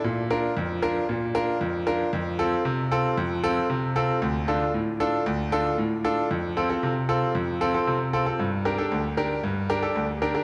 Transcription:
<<
  \new Staff \with { instrumentName = "Grand piano" } { \time 4/4 \key f \major \tempo 4 = 115 r8 <d' f' bes'>8 r8 <d' f' bes'>8 r8 <d' f' bes'>8 r8 <d' f' bes'>8 | r8 <c' f' a'>8 r8 <c' f' a'>8 r8 <c' f' a'>8 r8 <c' f' a'>8 | r8 <d' f' a'>8 r8 <d' f' a'>8 r8 <d' f' a'>8 r8 <d' f' a'>8 | r8 <c' f' a'>16 <c' f' a'>8 r16 <c' f' a'>8 r8 <c' f' a'>16 <c' f' a'>8 r16 <c' f' a'>16 <c' f' a'>16 |
r8 <d' g' bes'>16 <d' g' a'>8 r16 <d' g' bes'>8 r8 <d' g' bes'>16 <d' g' a'>8 r16 <d' g' bes'>16 <d' g' bes'>16 | }
  \new Staff \with { instrumentName = "Grand piano" } { \clef bass \time 4/4 \key f \major bes,4 f,4 bes,4 f,4 | f,4 c4 f,4 c4 | d,4 a,4 d,4 a,4 | f,4 c4 f,4 c4 |
g,4 d,4 g,4 d,4 | }
>>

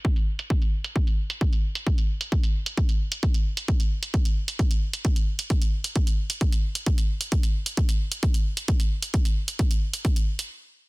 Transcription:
\new DrumStaff \with { instrumentName = "Drums" } \drummode { \time 4/4 \tempo 4 = 132 <hh bd>16 hh8 hh16 <hh bd>16 hh8 hh16 <hh bd>16 hh8 hh16 <hh bd>16 hh8 hh16 | <hh bd>16 hh8 hh16 <hh bd>16 hh8 hh16 <hh bd>16 hh8 hh16 <hh bd>16 hh8 hh16 | <hh bd>16 hh8 hh16 <hh bd>16 hh8 hh16 <hh bd>16 hh8 hh16 <hh bd>16 hh8 hh16 | <hh bd>16 hh8 hh16 <hh bd>16 hh8 hh16 <hh bd>16 hh8 hh16 <hh bd>16 hh8 hh16 |
<hh bd>16 hh8 hh16 <hh bd>16 hh8 hh16 <hh bd>16 hh8 hh16 <hh bd>16 hh8 hh16 | <hh bd>16 hh8 hh16 <hh bd>16 hh8 hh16 <hh bd>16 hh8 hh16 r4 | }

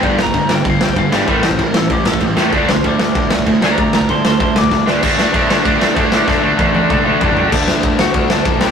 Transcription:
<<
  \new Staff \with { instrumentName = "Lead electric guitar" } { \time 4/4 \key d \mixolydian \tempo 4 = 192 r8 bes''4 g''8 f''8 g''8 f''8 d''8 | bes'8 c''8 bes'8 a'8 g'8 a'8 g'8 f'8 | d'8 f'8 d'8 d'4 r4 <d'' bes''>8 | <d'' bes''>8 <d'' bes''>8 <a'' c'''>8 <a'' c'''>8 <a'' c'''>8 d'''4 r8 |
r1 | r1 | <d' d''>4. <fis' fis''>4 <d' d''>4. | }
  \new Staff \with { instrumentName = "Distorted electric guitar" } { \clef bass \time 4/4 \key d \mixolydian <g, d g>8 <g, d>8 <g, d>8 <g, d>8 <g, d>8 <g, d>8 <g, d>8 <g, d g>8 | <a, e a>8 <a, e>8 <a, e>8 <a, e>8 <a, e>8 <a, e>8 <a, e>8 <a, e a>8 | <d a d'>8 <d a>8 <d a>8 <d a>8 <d a>8 <d a>8 <d a>8 <d a d'>8 | <d a>8 <d a>8 <d a>8 <d a>8 <d a>8 <d a>8 <d a>8 <d a d'>8 |
<d a d'>8 <d a d'>8 <d a d'>8 <d a d'>8 <d a d'>8 <d a d'>8 <d a d'>8 <d a d'>8 | <d a d'>8 <d a d'>8 <d a d'>8 <d a d'>8 <d a d'>8 <d a d'>8 <d a d'>8 <d a d'>8 | r1 | }
  \new Staff \with { instrumentName = "Overdriven electric guitar" } { \clef bass \time 4/4 \key d \mixolydian <g, d g>8 <g, d>8 <g, d>8 <g, d>8 <g, d>8 <g, d>8 <g, d>8 <g, d g>8 | <a, e a>8 <a, e>8 <a, e>8 <a, e>8 <a, e>8 <a, e>8 <a, e>8 <a, e a>8 | <d a d'>8 <d a>8 <d a>8 <d a>8 <d a>8 <d a>8 <d a>8 <d a d'>8 | <d a>8 <d a>8 <d a>8 <d a>8 <d a>8 <d a>8 <d a>8 <d a d'>8 |
<d a d'>8 <d a d'>8 <d a d'>8 <d a d'>8 <d a d'>8 <d a d'>8 <d a d'>8 <d a d'>8 | <d a d'>8 <d a d'>8 <d a d'>8 <d a d'>8 <d a d'>8 <d a d'>8 <d a d'>8 <d a d'>8 | <d a d'>2 <d a d'>4. <c g c'>8 | }
  \new Staff \with { instrumentName = "Picked electric bass" } { \clef bass \time 4/4 \key d \mixolydian g,,8 g,,8 g,,8 g,,8 g,,4 g,,8 aes,,8 | a,,8 a,,8 a,,8 a,,8 a,,8 a,,8 a,,8 e,8 | d,8 d,8 d,8 d,8 d,4 d,8 d,8 | d,8 d,8 d,8 d,8 d,8 d,8 d,8 d,8 |
d,4 d,8 d,8 d,8 a,,8 d,8 a,8 | d,8 d,8 d,4 d,8 d,8 a,,4 | d,8 d,8 d,8 d,8 d,8 d,8 b,,8 c,8 | }
  \new DrumStaff \with { instrumentName = "Drums" } \drummode { \time 4/4 <cymc bd>8 sn16 bd16 <cymc bd>8 sn8 <cymc bd>8 sn16 bd16 <cymc bd>8 sn8 | <cymc bd>8 sn16 bd16 <cymc bd>8 sn8 <cymc bd>8 sn16 bd16 <cymc bd>8 sn8 | <cymc bd>8 sn16 bd16 <cymc bd>8 sn8 <cymc bd>8 sn16 bd16 <cymc bd>8 sn8 | <cymc bd>8 sn16 bd16 <cymc bd>8 sn8 <cymc bd>8 sn16 bd16 <bd sn>8 sn8 |
<cymc bd>8 sn8 <cymc bd>8 sn8 <cymc bd>8 sn8 <cymc bd>8 sn8 | <bd sn>4 <bd tommh>8 tommh8 <bd toml>4 <bd tomfh>8 tomfh8 | <cymc bd>8 sn8 <bd cymr>8 sn8 <bd cymr>8 sn8 <bd cymr>8 sn8 | }
>>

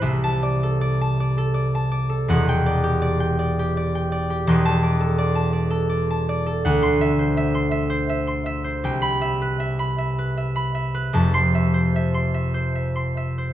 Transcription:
<<
  \new Staff \with { instrumentName = "Harp" } { \time 3/4 \key c \major \tempo 4 = 80 << { r16 a''2~ a''8. | r16 g''2~ g''8.~ | g''16 a''2~ a''8.~ | a''16 c'''2~ c'''8.~ |
c'''16 b''2~ b''8. | r16 c'''2~ c'''8. | } \\ { <c'' e'' a''>8 d''16 a'16 d''16 a''16 d''16 a'16 d''16 a''16 d''16 a'16 | fis''8 d''16 g'16 d''16 g''16 d''16 g'16 d''16 g''16 d''16 g'16 | g''8 d''16 a'16 d''16 a''16 d''16 a'16 d''16 a''16 d''16 a'16 | fis''8 e''16 c''16 e''16 c'''16 e''16 c''16 e''16 c'''16 e''16 c''16 |
g''8 e''16 b'16 e''16 b''16 e''16 b'16 e''16 b''16 e''16 b'16 | a''8 e''16 c''16 e''16 c'''16 e''16 c''16 e''16 c'''16 e''16 c''16 | } >> }
  \new Staff \with { instrumentName = "Harp" } { \clef bass \time 3/4 \key c \major <c, c>2. | <e,, e,>2. | <e,, e,>2. | d,2. |
c,2. | <f,, f,>2. | }
>>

